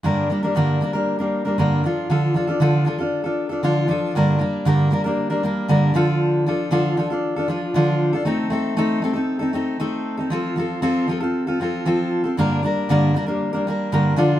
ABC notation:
X:1
M:4/4
L:1/16
Q:1/4=117
K:Gm
V:1 name="Steel-string acoustic guitar"
[G,,D,G,B,DB]2 [G,B,DB] [G,B,DB] [G,,D,G,B,DB]2 [G,B,DB] [G,B,DB]2 [G,B,DB]2 [G,B,DB] [G,,D,G,B,DB]2 [F,DFA]2 | [D,F,DFA]2 [F,DFA] [DFA] [D,F,DFA]2 [F,DFA] [DFA]2 [DFA]2 [DFA] [D,F,DFA]2 [F,DFA]2 | [G,,D,G,B,DB]2 [G,B,DB]2 [G,,D,G,B,DB]2 [G,B,DB] [G,B,DB]2 [G,B,DB] [G,B,DB]2 [G,,D,G,B,DB]2 [D,F,DFA]2- | [D,F,DFA]2 [F,DFA]2 [D,F,DFA]2 [F,DFA] [DFA]2 [DFA] [F,DFA]2 [D,F,DFA]3 [DFA] |
[A,CEA]2 [A,CEA]2 [A,CEA]2 [A,CEA] [CEA]2 [CEA] [A,CEA]2 [A,CEA]3 [CEA] | [F,CFA]2 [F,CFA]2 [F,CFA]2 [F,CFA] [CFA]2 [CFA] [F,CFA]2 [F,CFA]3 [CFA] | [G,,D,G,B,DB]2 [G,B,DB]2 [G,,D,G,B,DB]2 [G,B,DB] [G,B,DB]2 [G,B,DB] [G,B,DB]2 [G,,D,G,B,DB]2 [D,F,DFA]2 |]